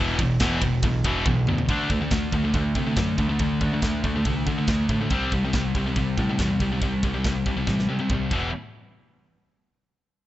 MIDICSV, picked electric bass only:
0, 0, Header, 1, 2, 480
1, 0, Start_track
1, 0, Tempo, 427350
1, 1899, Time_signature, 4, 2, 24, 8
1, 11532, End_track
2, 0, Start_track
2, 0, Title_t, "Picked electric bass"
2, 0, Program_c, 0, 34
2, 0, Note_on_c, 0, 28, 93
2, 197, Note_off_c, 0, 28, 0
2, 209, Note_on_c, 0, 28, 98
2, 437, Note_off_c, 0, 28, 0
2, 453, Note_on_c, 0, 28, 98
2, 679, Note_off_c, 0, 28, 0
2, 690, Note_on_c, 0, 28, 91
2, 918, Note_off_c, 0, 28, 0
2, 925, Note_on_c, 0, 35, 98
2, 1155, Note_off_c, 0, 35, 0
2, 1170, Note_on_c, 0, 28, 95
2, 1397, Note_off_c, 0, 28, 0
2, 1410, Note_on_c, 0, 35, 97
2, 1637, Note_off_c, 0, 35, 0
2, 1656, Note_on_c, 0, 38, 88
2, 1880, Note_off_c, 0, 38, 0
2, 1894, Note_on_c, 0, 38, 91
2, 2109, Note_off_c, 0, 38, 0
2, 2130, Note_on_c, 0, 38, 83
2, 2347, Note_off_c, 0, 38, 0
2, 2370, Note_on_c, 0, 38, 91
2, 2587, Note_off_c, 0, 38, 0
2, 2611, Note_on_c, 0, 38, 84
2, 2827, Note_off_c, 0, 38, 0
2, 2851, Note_on_c, 0, 38, 91
2, 3067, Note_off_c, 0, 38, 0
2, 3091, Note_on_c, 0, 48, 85
2, 3307, Note_off_c, 0, 48, 0
2, 3328, Note_on_c, 0, 42, 89
2, 3545, Note_off_c, 0, 42, 0
2, 3570, Note_on_c, 0, 38, 90
2, 3786, Note_off_c, 0, 38, 0
2, 3815, Note_on_c, 0, 38, 87
2, 4029, Note_off_c, 0, 38, 0
2, 4058, Note_on_c, 0, 38, 88
2, 4271, Note_off_c, 0, 38, 0
2, 4295, Note_on_c, 0, 38, 93
2, 4509, Note_off_c, 0, 38, 0
2, 4533, Note_on_c, 0, 38, 87
2, 4748, Note_off_c, 0, 38, 0
2, 4778, Note_on_c, 0, 36, 89
2, 4991, Note_off_c, 0, 36, 0
2, 5013, Note_on_c, 0, 50, 86
2, 5228, Note_off_c, 0, 50, 0
2, 5252, Note_on_c, 0, 38, 86
2, 5467, Note_off_c, 0, 38, 0
2, 5492, Note_on_c, 0, 45, 84
2, 5707, Note_off_c, 0, 45, 0
2, 5734, Note_on_c, 0, 36, 86
2, 5948, Note_off_c, 0, 36, 0
2, 5975, Note_on_c, 0, 36, 86
2, 6189, Note_off_c, 0, 36, 0
2, 6215, Note_on_c, 0, 36, 89
2, 6429, Note_off_c, 0, 36, 0
2, 6452, Note_on_c, 0, 36, 88
2, 6668, Note_off_c, 0, 36, 0
2, 6697, Note_on_c, 0, 36, 90
2, 6910, Note_off_c, 0, 36, 0
2, 6936, Note_on_c, 0, 45, 92
2, 7150, Note_off_c, 0, 45, 0
2, 7180, Note_on_c, 0, 40, 89
2, 7392, Note_off_c, 0, 40, 0
2, 7412, Note_on_c, 0, 36, 86
2, 7628, Note_off_c, 0, 36, 0
2, 7655, Note_on_c, 0, 36, 94
2, 7870, Note_off_c, 0, 36, 0
2, 7895, Note_on_c, 0, 36, 90
2, 8110, Note_off_c, 0, 36, 0
2, 8136, Note_on_c, 0, 36, 85
2, 8351, Note_off_c, 0, 36, 0
2, 8377, Note_on_c, 0, 36, 83
2, 8591, Note_off_c, 0, 36, 0
2, 8617, Note_on_c, 0, 33, 87
2, 8832, Note_off_c, 0, 33, 0
2, 8861, Note_on_c, 0, 48, 88
2, 9074, Note_off_c, 0, 48, 0
2, 9094, Note_on_c, 0, 36, 89
2, 9311, Note_off_c, 0, 36, 0
2, 9334, Note_on_c, 0, 28, 88
2, 9561, Note_off_c, 0, 28, 0
2, 11532, End_track
0, 0, End_of_file